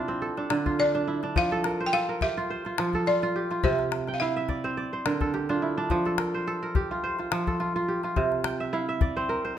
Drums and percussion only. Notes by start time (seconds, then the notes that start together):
0.37 calabash click
0.50 calabash click
0.66 calabash thump
0.79 calabash click
0.95 calabash click
1.23 calabash click
1.36 calabash thump
1.51 calabash click
1.64 calabash click
2.21 calabash thump
2.65 calabash click
2.78 calabash click
2.93 calabash thump
3.06 calabash click
3.22 calabash click
3.51 calabash click
3.63 calabash thump, calabash click
3.79 calabash click
3.92 calabash click
4.08 calabash click
4.49 calabash thump, calabash click
5.06 calabash click
5.21 calabash thump
5.34 calabash click
5.49 calabash click
5.90 calabash thump
6.06 calabash click
6.18 calabash click
6.75 calabash thump
7.19 calabash click
7.32 calabash click
7.47 calabash thump
7.60 calabash click
8.04 calabash click
8.16 calabash thump
8.32 calabash click
8.44 calabash click
9.01 calabash thump
9.45 calabash click